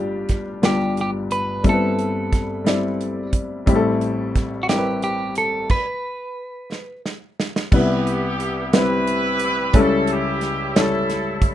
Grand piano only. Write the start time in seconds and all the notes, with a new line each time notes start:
Already playing: G1 G2 G3 D4 F4 G4 B4
0.62 G1 G2 G3 D4 F4 G4
1.64 G1 G2 G3 C4 E4 A4
1.73 B4
2.64 G3 C4 E4 D5
3.66 A1 A2 G3 C4 E4 G4
3.75 A4
4.69 G3 C4 E4 A#4
4.77 B4
7.72 C2 C3 G3 B3 E4 B4
8.73 G3 C4 E4 B4
9.73 C#2 C#3 G3 C#4 E4 A4
10.75 G3 C#4 E4 A4